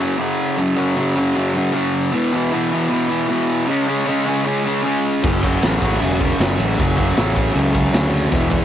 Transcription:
Already playing: distorted electric guitar F#2
0.00 distorted electric guitar C#3 F#3
0.18 distorted electric guitar F#2 C#3 F#3
0.58 distorted electric guitar F#2 C#3 F#3
0.77 distorted electric guitar C#3 F#3
0.97 distorted electric guitar F#2 C#3 F#3
1.16 distorted electric guitar C#3 F#3
1.36 distorted electric guitar F#2 C#3 F#3
1.54 distorted electric guitar C#3 F#3
1.73 distorted electric guitar F#2 C#3 F#3
2.13 distorted electric guitar E2 B2 E3
2.33 distorted electric guitar B2 E3
2.52 distorted electric guitar E2 B2 E3
2.72 distorted electric guitar B2 E3
2.90 distorted electric guitar E2 B2 E3
3.09 distorted electric guitar B2 E3
3.29 distorted electric guitar E2 B2 E3
3.67 distorted electric guitar C#3 G#3 C#4
3.88 distorted electric guitar G#3 C#4
4.07 distorted electric guitar C#3 G#3 C#4
4.27 distorted electric guitar G#3 C#4
4.45 distorted electric guitar C#3 G#3 C#4
4.65 distorted electric guitar G#3 C#4
4.83 distorted electric guitar C#3 G#3 C#4
5.23 fingered electric bass F#1, distorted electric guitar F#2 C#3 F#3, kick, crash
5.43 distorted electric guitar C#3 F#3, kick, ride
5.63 fingered electric bass A1, distorted electric guitar F#2 C#3 F#3, snare, ride
5.82 fingered electric bass A1, distorted electric guitar C#3 F#3, kick, snare, ride
6.01 fingered electric bass E1, distorted electric guitar F#2 C#3 F#3, ride
6.21 distorted electric guitar C#3 F#3, kick, ride
6.40 fingered electric bass F#1, distorted electric guitar F#2 C#3 F#3, snare, ride
6.58 fingered electric bass A1, ride
6.78 fingered electric bass F#1, distorted electric guitar F#2 C#3 F#3, kick, ride
6.96 distorted electric guitar C#3 F#3, kick, ride
7.15 fingered electric bass A1, distorted electric guitar F#2 C#3 F#3, snare, ride
7.35 distorted electric guitar C#3 F#3, kick, ride
7.53 fingered electric bass C#2, distorted electric guitar F#2 C#3 F#3, ride
7.73 distorted electric guitar C#3 F#3, kick, ride
7.94 fingered electric bass D2, distorted electric guitar F#2 C#3 F#3, snare, ride
8.14 ride
8.29 fingered electric bass E1, distorted electric guitar E2 B2 E3, kick, ride
8.49 distorted electric guitar B2 E3, kick, ride

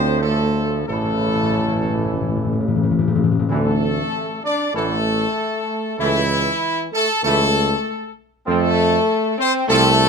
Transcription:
Already playing: tuba D2, trombone section A2 F3, french horn section C4, trumpet section C5
0.22 french horn section A3, trumpet section A4
0.87 tuba A1, timpani A2, trombone section C#3 E3, french horn section A3, trumpet section A4
0.96 timpani A2
1.04 timpani A2
1.19 timpani A2
1.28 timpani A2
1.36 timpani A2
1.43 timpani A2
1.51 timpani A2
1.59 timpani A2
1.68 timpani A2
1.75 timpani A2
1.82 timpani A2
1.90 timpani A2
1.98 timpani A2
2.06 timpani A2
2.13 timpani A2
2.21 timpani A2
2.29 timpani A2
2.37 timpani A2
2.45 timpani A2
2.53 timpani A2
2.61 timpani A2
2.68 timpani A2
2.76 timpani A2
2.83 timpani A2
2.91 timpani A2
2.99 timpani A2
3.08 timpani A2
3.15 timpani A2
3.24 timpani A2
3.32 timpani A2
3.39 timpani A2
3.48 tuba D2, trombone section D3 E3, timpani D3, french horn section A3, trumpet section A4
4.44 french horn section D4, trumpet section D5
4.73 tuba A1, trombone section D3 E3, french horn section A3, trumpet section A4
5.97 tuba C#2, french horn section E3, trombone section E3 A3, trumpet section E4
6.92 french horn section A3, trumpet section A4
7.22 tuba C#2, trombone section E3 A3, french horn section A3, trumpet section A4
8.46 tuba F2, trombone section F3 C4, french horn section A3, trumpet section A4
9.38 french horn section C4, trumpet section C5
9.68 tuba C2, trombone section F3 C4, french horn section A3, trumpet section A4

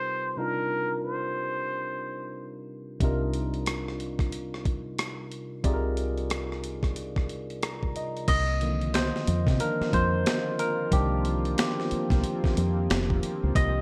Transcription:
Already playing: tine electric piano C3 G3 C4 D#4 F4 A#4, muted trumpet C5
0.36 tine electric piano C3 G3 D4 D#4 F4 A#4, muted trumpet A#4
1.04 muted trumpet C5
3.00 fingered electric bass C2, tine electric piano C3 G3 D4 D#4 F4 A#4, kick, closed hi-hat
3.34 closed hi-hat
3.54 closed hi-hat
3.66 cross-stick, closed hi-hat
3.88 cross-stick
4.00 closed hi-hat
4.19 kick, cross-stick, closed hi-hat
4.32 closed hi-hat
4.54 cross-stick
4.65 kick, closed hi-hat
4.99 cross-stick, closed hi-hat
5.32 closed hi-hat
5.63 fingered electric bass C2, tine electric piano C3 G3 D#4 F4 G#4 D5, kick, closed hi-hat
5.74 tine electric piano A#4
5.97 closed hi-hat
6.17 closed hi-hat
6.30 cross-stick, closed hi-hat
6.52 cross-stick
6.64 closed hi-hat
6.83 kick, cross-stick, closed hi-hat
6.96 closed hi-hat
7.16 kick, cross-stick
7.29 closed hi-hat
7.50 closed hi-hat
7.63 tine electric piano A#5, cross-stick, closed hi-hat
7.83 kick
7.96 tine electric piano D#5, closed hi-hat
8.17 closed hi-hat
8.28 fingered electric bass C2, analog synth pad F3 A#3 C4 F4, tine electric piano D#5, kick, closed hi-hat, crash
8.61 tine electric piano D3 D#3 F3 A#3, closed hi-hat
8.81 closed hi-hat
8.94 tine electric piano C5, snare, closed hi-hat
9.16 snare
9.27 fingered electric bass F2, closed hi-hat
9.47 fingered electric bass C3, kick, snare, closed hi-hat
9.60 tine electric piano D#3 F3 A#3 D4 A#4, closed hi-hat
9.81 muted fingered electric bass stroke, snare
9.93 fingered electric bass F2, tine electric piano C5, kick, closed hi-hat
10.26 snare, closed hi-hat
10.59 tine electric piano A#4, closed hi-hat
10.92 fingered electric bass C2, tine electric piano D#3 F3 A#3 D4 G4, kick, closed hi-hat
11.25 closed hi-hat
11.45 closed hi-hat
11.58 tine electric piano G4, snare, closed hi-hat
11.80 snare
11.91 muted fingered electric bass stroke, closed hi-hat
12.10 fingered electric bass C2, kick, snare, closed hi-hat
12.24 closed hi-hat
12.44 muted fingered electric bass stroke, kick, snare
12.57 fingered electric bass F2, closed hi-hat
12.90 fingered electric bass F1, snare, closed hi-hat
13.10 kick
13.23 closed hi-hat
13.43 fingered electric bass C#2
13.55 fingered electric bass C2, analog synth pad G4, tine electric piano D#5, kick, closed hi-hat

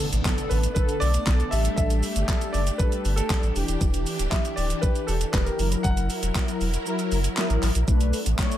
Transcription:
Already playing: string machine A3 B3 D4, impact
0.00 open hi-hat, shaker
0.13 sub bass A1, closed hi-hat, shaker
0.25 analog polysynth D3 B3 A4, kick, snare, clap, shaker
0.38 closed hi-hat, shaker
0.49 sub bass A1, grand piano B4, open hi-hat, shaker
0.63 closed hi-hat, shaker
0.75 analog polysynth D3 B3 A4, grand piano B4, kick, shaker
0.89 closed hi-hat, shaker
1.00 sub bass B1, grand piano D5, open hi-hat, shaker
1.14 closed hi-hat, shaker
1.27 sub bass B1, analog polysynth D3 B3 A4, kick, snare, clap, shaker
1.40 closed hi-hat, shaker
1.51 sub bass A1, analog polysynth G3 D4 A4, string machine D4 G4, grand piano E5, open hi-hat, shaker
1.65 closed hi-hat, shaker
1.76 sub bass A1, grand piano E5, kick, shaker
1.90 closed hi-hat, shaker
2.03 open hi-hat, shaker
2.16 sub bass G1, closed hi-hat, shaker
2.28 analog polysynth G3 D4 A4, kick, snare, clap, shaker
2.41 closed hi-hat, shaker
2.53 sub bass F#1, grand piano D5, open hi-hat, shaker
2.67 closed hi-hat, shaker
2.78 analog polysynth G3 D4 A4, grand piano B4, kick, shaker
2.92 closed hi-hat, shaker
3.05 sub bass G1, open hi-hat, shaker
3.16 grand piano A4, closed hi-hat, shaker
3.30 analog polysynth G3 D4 A4, kick, snare, clap, shaker
3.43 sub bass A1, closed hi-hat, shaker
3.55 sub bass E1, analog polysynth E3 D4 G4, string machine E3, open hi-hat, shaker
3.68 sub bass D#1, closed hi-hat, shaker
3.81 sub bass E1, kick, shaker
3.94 closed hi-hat, shaker
4.06 open hi-hat, shaker
4.19 sub bass D1, closed hi-hat, shaker
4.30 analog polysynth E3 D4 G4, grand piano E5, kick, snare, clap, shaker
4.45 closed hi-hat, shaker
4.56 sub bass D1, grand piano D5, open hi-hat, shaker
4.70 closed hi-hat, shaker
4.81 analog polysynth E3 D4 G4, grand piano B4, kick, shaker
4.95 closed hi-hat, shaker
5.07 sub bass E1, grand piano A4, open hi-hat, shaker
5.21 closed hi-hat, shaker
5.32 sub bass E1, analog polysynth E3 D4 G4, grand piano B4, kick, snare, clap, shaker
5.45 grand piano A#4, closed hi-hat, shaker
5.59 sub bass F#1, analog polysynth F#3 E4 A#4, string machine F#3 E4 A#4, open hi-hat, shaker
5.72 closed hi-hat, shaker
5.83 sub bass F#1, grand piano F#5, kick, shaker
5.97 closed hi-hat, shaker
6.10 open hi-hat, shaker
6.23 sub bass E1, closed hi-hat, shaker
6.35 analog polysynth F#3 E4 A#4, kick, snare, clap, shaker
6.48 closed hi-hat, shaker
6.61 sub bass E1, open hi-hat, shaker
6.74 closed hi-hat, shaker
6.86 analog polysynth F#3 E4 A#4, shaker
6.99 closed hi-hat, shaker
7.12 sub bass F#1, open hi-hat, shaker
7.24 closed hi-hat, shaker
7.37 analog polysynth F#3 E4 A#4, snare, clap, shaker
7.50 sub bass A1, closed hi-hat, shaker
7.63 sub bass A1, clap, open hi-hat, shaker
7.75 sub bass A#1, closed hi-hat, shaker
7.88 sub bass B1, analog polysynth A3 D4 B4, string machine A3 B3 D4, kick, shaker
8.01 closed hi-hat, shaker
8.13 open hi-hat, shaker
8.26 sub bass A1, closed hi-hat, shaker
8.39 analog polysynth A3 D4 C#5, kick, snare, clap, shaker
8.52 closed hi-hat, shaker

